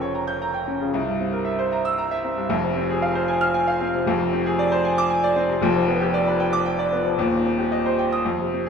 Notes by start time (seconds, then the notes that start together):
Already playing: F1 F2 C#3 C#4 A#4 G5
0.01 C#5
0.15 A#5
0.27 G6
0.42 A#5
0.54 G5
0.67 C#4
0.80 C#3
0.94 C2
1.07 G2
1.20 C4
1.33 A#4
1.45 E5
1.59 C5
1.72 A#5
1.85 E6
1.98 A#5
2.11 E5
2.24 C4
2.37 G2
2.49 F1 F2
2.64 C3
2.77 C4
2.90 G#4
3.02 F5
3.15 C5
3.28 G#5
3.41 F6
3.54 G#5
3.67 F5
3.81 C4
3.94 C3
4.06 F1 F2
4.20 C3
4.33 C4
4.46 G#4
4.59 D5
4.72 C5
4.85 G#5
4.98 D6
5.10 G#5
5.24 D5
5.36 C4
5.49 C3
5.61 F1 F2
5.76 F3
5.88 B3
6.01 G4
6.14 D5
6.27 B4
6.40 G5
6.53 D6
6.66 G5
6.79 D5
6.92 B3
7.05 F3
7.18 D#1 D#2
7.32 D#3
7.45 C4
7.58 G4
7.72 D#5
7.86 C5
7.99 G5
8.13 D#6
8.26 F2
8.40 C3
8.54 C4